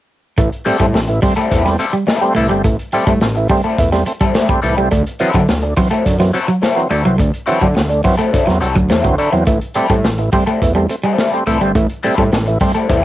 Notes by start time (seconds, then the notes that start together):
0.37 A1 A2 E3 A3, kick, closed hi-hat, shaker
0.52 closed hi-hat, shaker
0.65 A2 G3 A3 C4 E4 A4, muted clean electric guitar stroke, closed hi-hat
0.80 A2 G3 A3 C4, kick, closed hi-hat, shaker
0.93 A1 A3 C4, muted clean electric guitar stroke, snare, shaker
1.07 A2 E3, muted clean electric guitar stroke, closed hi-hat, shaker
1.22 G3 A3 C4, kick, open hi-hat, shaker
1.36 G3 A3 C4 E4 A4, closed hi-hat, shaker
1.50 E2 A2 E3 G3 C4 E4 A4, kick, closed hi-hat, shaker
1.64 G3 A3 C4, muted clean electric guitar stroke, snare, closed hi-hat, shaker
1.79 G3 A3 C4 E4 A4, muted clean electric guitar stroke, closed hi-hat, shaker
1.93 G3, muted clean electric guitar stroke, closed hi-hat, shaker
2.07 G3 C4 E4 A4, muted clean electric guitar stroke, snare, shaker
2.21 G3 A3 C4, muted clean electric guitar stroke, closed hi-hat, shaker
2.35 C2 A2 E3 G3 A3 C4 E4 A4, closed hi-hat
2.49 G1 G3 A3 C4, muted clean electric guitar stroke, closed hi-hat, shaker
2.64 A1 A2 E3 A3, kick, closed hi-hat, shaker
2.79 closed hi-hat, shaker
2.92 A2 G3 A3 C4 E4 A4, muted clean electric guitar stroke, closed hi-hat
3.07 A2 G3 A3 C4, kick, closed hi-hat, shaker
3.21 A1 A3 C4, muted clean electric guitar stroke, snare, shaker
3.35 A2 E3, muted clean electric guitar stroke, closed hi-hat, shaker
3.49 G3 A3 C4, kick, open hi-hat, shaker
3.64 G3 A3 C4 E4 A4, closed hi-hat, shaker
3.78 E2 A2 E3, muted clean electric guitar stroke, kick, closed hi-hat, shaker
3.92 G3 A3 C4, muted clean electric guitar stroke, snare, closed hi-hat, shaker
4.06 A3 C4, muted clean electric guitar stroke, closed hi-hat, shaker
4.20 G3 C4 E4 A4, kick, closed hi-hat, shaker
4.35 G3 A3 C4 E4 A4, snare, shaker
4.49 G3 A3 C4, muted clean electric guitar stroke, kick, closed hi-hat, shaker
4.62 C2 A2 E3 G3 C4 E4 A4, closed hi-hat
4.77 G3 A3 C4, muted clean electric guitar stroke, closed hi-hat, shaker
4.91 D2 D3 A3, kick, closed hi-hat, shaker
5.06 closed hi-hat, shaker
5.20 D3 E3 F#3 C4 E4 A4, muted clean electric guitar stroke, closed hi-hat
5.34 D3 F#3 C4, kick, closed hi-hat, shaker
5.48 D2 F#3 C4, muted clean electric guitar stroke, snare, shaker
5.62 D3, muted clean electric guitar stroke, closed hi-hat, shaker
5.77 E3 F#3 C4, kick, open hi-hat, shaker
5.90 F#3 A3 C4 E4 A4, closed hi-hat, shaker
6.05 F#2 D3, muted clean electric guitar stroke, kick, closed hi-hat, shaker
6.20 E3 F#3 C4, muted clean electric guitar stroke, snare, closed hi-hat, shaker
6.33 F#3 C4 E4 A4, muted clean electric guitar stroke, closed hi-hat, shaker
6.48 F#3, muted clean electric guitar stroke, closed hi-hat, shaker
6.62 F#3 C4 E4 A4, muted clean electric guitar stroke, snare, shaker
6.76 E3 F#3 C4, muted clean electric guitar stroke, closed hi-hat, shaker
6.90 D2 D3 F#3 A3 C4 E4 A4, closed hi-hat
7.05 C2 E3 F#3 C4, muted clean electric guitar stroke, closed hi-hat, shaker
7.18 D2 D3 A3, kick, closed hi-hat, shaker
7.34 closed hi-hat, shaker
7.46 D3 E3 F#3 C4 E4 A4, muted clean electric guitar stroke, closed hi-hat
7.61 D3 F#3 C4, kick, closed hi-hat, shaker
7.75 D2 F#3 C4, muted clean electric guitar stroke, snare, shaker
7.89 D3, muted clean electric guitar stroke, closed hi-hat, shaker
8.04 E3 F#3 C4, kick, open hi-hat, shaker
8.18 F#3 A3 C4 E4 A4, closed hi-hat, shaker
8.33 D3 F#3 C4 E4 A4, kick, closed hi-hat, shaker
8.47 E2 E3 F#3 C4, muted clean electric guitar stroke, snare, closed hi-hat, shaker
8.61 C2 F#3 C4 E4 A4, muted clean electric guitar stroke, closed hi-hat, shaker
8.76 D2 F#3, muted clean electric guitar stroke, kick, closed hi-hat, shaker
8.90 E2 F#3 A3 C4 E4 A4, snare, shaker
9.04 D2 E3 F#3 C4, muted clean electric guitar stroke, kick, closed hi-hat, shaker
9.18 D3 F#3 C4 E4 A4, closed hi-hat
9.32 E2 E3 F#3 C4, muted clean electric guitar stroke, closed hi-hat, shaker
9.47 A1 A2 E3 A3, kick, closed hi-hat, shaker
9.61 closed hi-hat, shaker
9.75 A2 G3 A3 C4 E4 A4, muted clean electric guitar stroke, closed hi-hat
9.90 A2 G3 A3 C4, kick, closed hi-hat, shaker
10.04 A1 A3 C4, muted clean electric guitar stroke, snare, shaker
10.18 A2 E3, muted clean electric guitar stroke, closed hi-hat, shaker
10.32 G3 A3 C4, kick, open hi-hat, shaker
10.46 G3 A3 C4 E4 A4, closed hi-hat, shaker
10.61 E2 A2 E3, muted clean electric guitar stroke, kick, closed hi-hat, shaker
10.75 G3 A3 C4, muted clean electric guitar stroke, closed hi-hat, shaker
10.89 A3 C4, muted clean electric guitar stroke, closed hi-hat, shaker
11.04 G3 C4 E4 A4, closed hi-hat, shaker
11.18 G3 C4 E4 A4, muted clean electric guitar stroke, snare, shaker
11.32 G3 A3 C4, muted clean electric guitar stroke, closed hi-hat, shaker
11.47 C2 A2 E3 G3 A3 C4 E4 A4, closed hi-hat
11.61 G1 G3 A3 C4, muted clean electric guitar stroke, closed hi-hat, shaker
11.75 A1 A2 E3 A3, kick, closed hi-hat, shaker
11.90 closed hi-hat, shaker
12.03 A2 G3 A3 C4 E4 A4, muted clean electric guitar stroke, closed hi-hat
12.18 A2 G3 A3 C4, kick, closed hi-hat, shaker
12.31 A1 A3 C4, muted clean electric guitar stroke, snare, shaker
12.46 A2 E3, muted clean electric guitar stroke, closed hi-hat, shaker
12.60 G3 A3 C4, kick, open hi-hat, shaker
12.74 G3 A3 C4 E4 A4, closed hi-hat, shaker
12.89 E2 A2 E3 G3 C4 E4 A4, kick, closed hi-hat, shaker